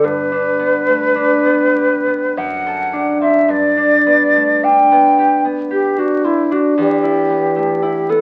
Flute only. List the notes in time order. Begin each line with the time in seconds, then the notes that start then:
0.05 B4
2.38 F#5
3.22 E5
3.51 D5
4.64 G5
5.72 G4
5.99 F#4
6.25 E4
6.53 F#4
6.79 G4
8.10 A4